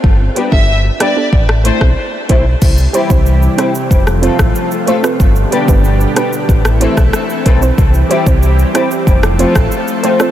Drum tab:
CC |----------------|x---------------|----------------|----------------|
HH |--x---x---x---x-|--x---x---x---x-|--x---x---x---x-|--x---x---x---x-|
SH |----------------|xxxxxxxxxxxxxxxx|xxxxxxxxxxxxxxxx|xxxxxxxxxxxxxxxx|
SD |------r--r-r----|------r--r-r---r|------r--r-rr---|------r--r-r---r|
BD |o--o----o--o--o-|o--o----o--o----|o--o----o--o--o-|o--o----o--o----|